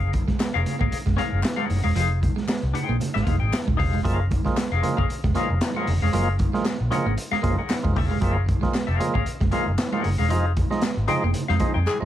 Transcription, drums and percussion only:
0.13 kick medium
0.13 closed hi-hat medium
0.13 muted conga soft
0.13 high conga medium
0.28 kick medium
0.28 snare soft
0.39 snare loud
0.39 clap medium
0.39 closed hi-hat medium
0.66 closed hi-hat medium
0.66 muted conga soft
0.66 low conga medium
0.81 kick medium
0.92 closed hi-hat loud
0.92 muted conga soft
1.07 kick loud
1.07 snare soft
1.18 snare soft
1.18 closed hi-hat medium
1.18 high conga medium
1.43 snare loud
1.43 clap loud
1.43 closed hi-hat loud
1.43 high conga medium
1.57 high conga medium
1.70 open hi-hat medium
1.70 muted conga soft
1.70 low conga medium
1.95 closed hi-hat loud
1.95 muted conga soft
2.23 kick medium
2.23 closed hi-hat medium
2.23 muted conga soft
2.23 high conga medium
2.37 snare soft
2.48 snare loud
2.48 clap medium
2.48 closed hi-hat medium
2.75 closed hi-hat medium
2.75 muted conga soft
2.75 low conga medium
3.00 closed hi-hat medium
3.00 low conga medium
3.16 snare soft
3.27 kick medium
3.27 snare soft
3.27 closed hi-hat medium
3.27 high conga medium
3.52 snare loud
3.52 clap medium
3.52 closed hi-hat loud
3.52 high conga medium
3.67 kick medium
3.67 high conga medium
3.79 kick loud
3.79 open hi-hat medium
3.79 muted conga soft
3.79 low conga medium
4.04 kick loud
4.04 closed hi-hat loud
4.04 muted conga soft
4.31 kick loud
4.31 closed hi-hat medium
4.31 muted conga soft
4.31 high conga loud
4.46 kick medium
4.46 snare soft
4.57 snare loud
4.57 clap medium
4.57 closed hi-hat medium
4.83 closed hi-hat medium
4.83 muted conga soft
4.83 low conga medium
4.98 kick medium
5.10 closed hi-hat medium
5.24 kick loud
5.24 snare soft
5.35 snare soft
5.35 closed hi-hat medium
5.35 high conga medium
5.61 snare loud
5.61 clap loud
5.61 closed hi-hat loud
5.61 muted conga soft
5.61 high conga medium
5.74 high conga medium
5.87 open hi-hat medium
5.87 low conga medium
6.13 closed hi-hat loud
6.13 muted conga soft
6.39 kick medium
6.39 closed hi-hat medium
6.39 muted conga soft
6.39 high conga medium
6.54 snare soft
6.64 snare loud
6.64 clap loud
6.64 closed hi-hat medium
6.64 muted conga soft
6.92 closed hi-hat medium
6.92 low conga medium
7.18 closed hi-hat loud
7.18 muted conga soft
7.33 snare soft
7.44 kick medium
7.44 snare soft
7.44 closed hi-hat medium
7.44 muted conga soft
7.44 high conga medium
7.70 snare loud
7.70 clap loud
7.70 closed hi-hat loud
7.70 muted conga soft
7.70 high conga medium
7.85 kick loud
7.85 high conga medium
7.96 kick loud
7.96 open hi-hat medium
7.96 muted conga soft
7.96 low conga medium
8.22 kick loud
8.22 closed hi-hat loud
8.49 kick loud
8.49 closed hi-hat medium
8.49 high conga loud
8.63 kick medium
8.63 snare soft
8.74 snare loud
8.74 clap medium
8.74 closed hi-hat medium
9.01 closed hi-hat medium
9.01 low conga medium
9.15 kick medium
9.26 closed hi-hat medium
9.41 kick loud
9.41 snare soft
9.52 snare soft
9.52 closed hi-hat medium
9.52 muted conga soft
9.52 high conga medium
9.78 snare loud
9.78 clap loud
9.78 closed hi-hat loud
9.78 high conga medium
9.92 high conga medium
10.04 open hi-hat medium
10.04 low conga medium
10.30 closed hi-hat loud
10.30 muted conga soft
10.57 kick medium
10.57 closed hi-hat medium
10.57 muted conga soft
10.57 high conga medium
10.71 snare soft
10.82 snare loud
10.82 clap loud
10.82 closed hi-hat medium
10.82 muted conga soft
11.08 closed hi-hat medium
11.08 muted conga soft
11.08 low conga medium
11.34 closed hi-hat loud
11.34 muted conga soft
11.34 low conga medium
11.49 snare soft
11.60 kick medium
11.60 snare soft
11.60 closed hi-hat medium
11.60 muted conga soft
11.60 high conga medium
11.86 clap medium
11.86 muted conga soft
11.86 high conga medium
12.00 high conga medium

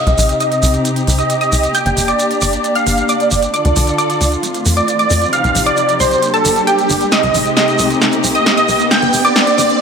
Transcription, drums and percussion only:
0.07 closed hi-hat medium
0.07 shekere soft
0.18 open hi-hat loud
0.18 shekere loud
0.29 closed hi-hat medium
0.29 shekere soft
0.40 closed hi-hat medium
0.40 shekere soft
0.52 closed hi-hat soft
0.52 shekere soft
0.63 open hi-hat medium
0.63 shekere medium
0.73 closed hi-hat medium
0.73 shekere soft
0.85 closed hi-hat medium
0.85 shekere soft
0.96 closed hi-hat medium
0.96 shekere soft
1.07 open hi-hat loud
1.07 shekere medium
1.19 closed hi-hat medium
1.19 shekere soft
1.30 closed hi-hat medium
1.30 shekere soft
1.41 closed hi-hat medium
1.41 shekere soft
1.52 open hi-hat medium
1.52 shekere medium
1.63 closed hi-hat medium
1.63 shekere soft
1.75 closed hi-hat medium
1.75 shekere medium
1.86 closed hi-hat medium
1.86 shekere soft
1.97 open hi-hat loud
1.97 shekere medium
2.08 closed hi-hat medium
2.08 shekere soft
2.19 closed hi-hat medium
2.19 shekere medium
2.31 closed hi-hat medium
2.31 shekere soft
2.41 open hi-hat medium
2.41 shekere loud
2.53 closed hi-hat medium
2.53 shekere soft
2.64 closed hi-hat medium
2.64 shekere medium
2.75 closed hi-hat medium
2.75 shekere soft
2.87 open hi-hat loud
2.87 shekere medium
2.98 closed hi-hat medium
2.98 shekere soft
3.09 closed hi-hat medium
3.09 shekere soft
3.20 closed hi-hat medium
3.20 shekere soft
3.31 open hi-hat medium
3.31 shekere medium
3.43 closed hi-hat medium
3.43 shekere soft
3.54 closed hi-hat medium
3.54 shekere medium
3.65 closed hi-hat medium
3.65 shekere soft
3.76 open hi-hat loud
3.76 shekere medium
3.87 closed hi-hat medium
3.87 shekere soft
3.98 closed hi-hat medium
3.98 shekere medium
4.10 closed hi-hat soft
4.10 shekere soft
4.21 open hi-hat medium
4.21 shekere medium
4.32 closed hi-hat soft
4.32 shekere soft
4.43 closed hi-hat medium
4.43 shekere medium
4.54 closed hi-hat medium
4.54 shekere soft
4.66 open hi-hat loud
4.66 shekere medium
4.77 closed hi-hat medium
4.77 shekere soft
4.88 closed hi-hat medium
4.88 shekere medium
4.99 closed hi-hat soft
4.99 shekere soft
5.10 open hi-hat medium
5.10 shekere medium
5.22 closed hi-hat medium
5.22 shekere soft
5.33 closed hi-hat medium
5.33 shekere medium
5.44 closed hi-hat soft
5.44 shekere soft
5.55 open hi-hat loud
5.55 shekere medium
5.66 closed hi-hat soft
5.66 shekere soft
5.77 closed hi-hat medium
5.77 shekere soft
5.89 closed hi-hat soft
5.89 shekere soft
6.00 open hi-hat medium
6.00 shekere medium
6.11 closed hi-hat medium
6.11 shekere soft
6.22 closed hi-hat medium
6.22 shekere medium
6.34 closed hi-hat soft
6.34 shekere soft
6.45 open hi-hat loud
6.45 shekere medium
6.56 closed hi-hat medium
6.56 shekere soft
6.67 closed hi-hat medium
6.67 shekere medium
6.79 closed hi-hat soft
6.79 shekere soft
6.90 open hi-hat medium
6.90 shekere loud
7.01 closed hi-hat soft
7.01 shekere soft
7.12 snare medium
7.12 closed hi-hat medium
7.12 shekere medium
7.23 closed hi-hat soft
7.23 shekere soft
7.34 open hi-hat loud
7.34 shekere medium
7.46 closed hi-hat soft
7.46 shekere soft
7.57 snare medium
7.57 closed hi-hat medium
7.57 shekere medium
7.68 closed hi-hat soft
7.68 shekere soft
7.79 open hi-hat medium
7.79 shekere medium
7.90 closed hi-hat medium
7.90 shekere soft
8.01 snare medium
8.01 closed hi-hat medium
8.01 shekere medium
8.12 closed hi-hat medium
8.12 shekere soft
8.24 open hi-hat loud
8.24 shekere medium
8.35 closed hi-hat medium
8.35 shekere soft
8.46 snare medium
8.46 closed hi-hat medium
8.46 shekere medium
8.57 closed hi-hat soft
8.57 shekere soft
8.68 open hi-hat medium
8.68 shekere medium
8.80 closed hi-hat medium
8.80 shekere soft
8.91 snare medium
8.91 closed hi-hat medium
8.91 shekere soft
9.02 closed hi-hat medium
9.02 shekere soft
9.13 open hi-hat loud
9.13 shekere medium
9.25 closed hi-hat medium
9.25 shekere soft
9.36 snare medium
9.36 closed hi-hat medium
9.36 shekere medium
9.47 closed hi-hat medium
9.47 shekere soft
9.58 open hi-hat medium
9.58 shekere loud
9.69 closed hi-hat medium
9.69 shekere soft

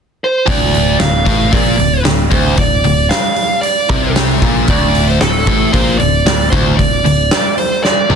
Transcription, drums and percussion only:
0.48 kick loud
0.48 open hi-hat medium
0.74 open hi-hat medium
1.00 snare loud
1.00 open hi-hat medium
1.26 kick loud
1.26 open hi-hat medium
1.52 kick loud
1.52 open hi-hat medium
1.79 open hi-hat medium
2.05 snare loud
2.05 open hi-hat medium
2.31 kick medium
2.31 open hi-hat medium
2.57 kick medium
2.57 open hi-hat medium
2.84 open hi-hat medium
3.10 snare loud
3.10 open hi-hat medium
3.36 open hi-hat medium
3.63 open hi-hat medium
3.89 kick loud
3.89 open hi-hat soft
4.16 snare loud
4.16 open hi-hat medium
4.42 kick medium
4.42 open hi-hat soft
4.68 kick loud
4.68 open hi-hat medium
4.95 open hi-hat soft
5.21 snare loud
5.21 open hi-hat medium
5.47 kick loud
5.47 open hi-hat medium
5.73 kick loud
5.73 open hi-hat medium
5.99 open hi-hat medium
6.26 snare loud
6.26 open hi-hat medium
6.53 kick medium
6.53 open hi-hat soft
6.79 kick medium
6.79 open hi-hat medium
7.06 open hi-hat medium
7.31 snare loud
7.31 open hi-hat medium
7.58 open hi-hat medium
7.85 snare medium
8.10 high tom medium

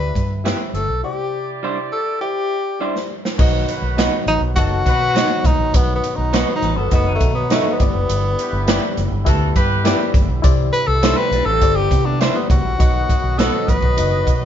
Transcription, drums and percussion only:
0.15 kick medium
0.15 closed hi-hat medium
0.46 snare medium
0.46 closed hi-hat medium
0.75 closed hi-hat medium
2.96 snare medium
3.25 snare medium
3.39 kick loud
3.39 crash medium
3.69 closed hi-hat medium
3.98 snare loud
3.98 closed hi-hat medium
3.98 muted conga soft
3.98 high conga medium
4.14 muted conga soft
4.27 closed hi-hat medium
4.27 low conga medium
4.56 kick medium
4.56 closed hi-hat medium
4.70 muted conga soft
4.85 kick medium
4.85 closed hi-hat medium
4.85 high conga soft
5.14 snare loud
5.14 closed hi-hat medium
5.14 muted conga soft
5.29 muted conga soft
5.29 high conga medium
5.44 kick loud
5.44 closed hi-hat medium
5.44 high conga medium
5.44 low conga medium
5.74 kick loud
5.74 closed hi-hat loud
5.74 muted conga soft
5.90 muted conga soft
6.04 closed hi-hat medium
6.33 snare loud
6.33 closed hi-hat medium
6.33 muted conga soft
6.33 high conga medium
6.48 muted conga soft
6.62 closed hi-hat medium
6.62 low conga medium
6.91 kick medium
6.91 closed hi-hat medium
7.20 kick medium
7.20 closed hi-hat medium
7.20 high conga soft
7.49 snare loud
7.49 closed hi-hat medium
7.49 muted conga soft
7.64 muted conga soft
7.64 high conga medium
7.80 kick medium
7.80 closed hi-hat medium
7.80 high conga medium
7.80 low conga medium
8.09 closed hi-hat loud
8.09 muted conga soft
8.24 muted conga soft
8.39 closed hi-hat medium
8.68 snare loud
8.68 closed hi-hat medium
8.68 muted conga soft
8.68 high conga medium
8.83 muted conga soft
8.97 closed hi-hat medium
8.97 low conga medium
9.26 kick medium
9.26 closed hi-hat medium
9.55 kick medium
9.55 closed hi-hat medium
9.55 high conga soft
9.85 snare loud
9.85 closed hi-hat medium
9.99 muted conga soft
9.99 high conga medium
10.14 kick loud
10.14 closed hi-hat medium
10.14 high conga medium
10.14 low conga medium
10.44 kick loud
10.44 closed hi-hat loud
10.74 closed hi-hat medium
11.03 snare loud
11.03 closed hi-hat loud
11.03 muted conga soft
11.03 high conga medium
11.19 muted conga soft
11.32 closed hi-hat medium
11.32 low conga medium
11.61 kick medium
11.61 closed hi-hat medium
11.91 kick medium
11.91 closed hi-hat medium
11.91 high conga soft
12.21 snare loud
12.21 closed hi-hat medium
12.34 muted conga soft
12.34 high conga medium
12.50 kick loud
12.50 closed hi-hat medium
12.50 high conga medium
12.50 low conga medium
12.80 kick loud
12.80 closed hi-hat medium
12.94 muted conga soft
13.10 kick medium
13.10 closed hi-hat medium
13.38 snare loud
13.38 closed hi-hat medium
13.38 muted conga soft
13.38 high conga medium
13.54 muted conga soft
13.68 kick medium
13.68 closed hi-hat medium
13.68 low conga medium
13.83 kick medium
13.98 closed hi-hat loud
14.11 muted conga soft
14.27 kick medium
14.27 closed hi-hat medium

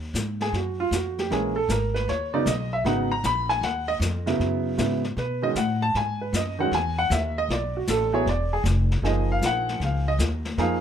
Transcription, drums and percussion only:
0.15 snare medium
0.15 hi-hat pedal medium
0.40 snare soft
0.54 brush sweep soft
0.54 snare soft
0.92 snare medium
0.92 hi-hat pedal medium
1.18 snare soft
1.31 brush sweep soft
1.31 snare soft
1.69 snare medium
1.69 hi-hat pedal medium
1.96 snare soft
2.08 brush sweep soft
2.08 snare soft
2.46 snare medium
2.46 hi-hat pedal soft
2.85 brush sweep medium
2.85 snare soft
3.24 snare medium
3.24 hi-hat pedal medium
3.50 snare soft
3.63 brush sweep medium
3.63 snare soft
4.01 snare medium
4.01 hi-hat pedal medium
4.27 snare soft
4.40 brush sweep soft
4.40 snare soft
4.78 snare medium
4.78 hi-hat pedal medium
5.04 snare soft
5.18 brush sweep soft
5.18 snare soft
5.56 snare medium
5.56 hi-hat pedal medium
5.95 brush sweep soft
5.95 snare soft
6.34 snare medium
6.34 hi-hat pedal medium
6.73 brush sweep medium
6.73 snare soft
7.11 snare medium
7.11 hi-hat pedal medium
7.50 brush sweep medium
7.50 snare soft
7.87 snare medium
7.87 hi-hat pedal medium
8.27 brush sweep soft
8.27 snare soft
8.65 snare medium
8.65 hi-hat pedal medium
8.91 snare soft
9.04 brush sweep soft
9.04 snare soft
9.42 snare medium
9.42 hi-hat pedal medium
9.69 snare soft
9.81 brush sweep medium
9.81 snare soft
10.19 snare medium
10.19 hi-hat pedal medium
10.45 snare soft
10.58 brush sweep soft
10.58 snare soft

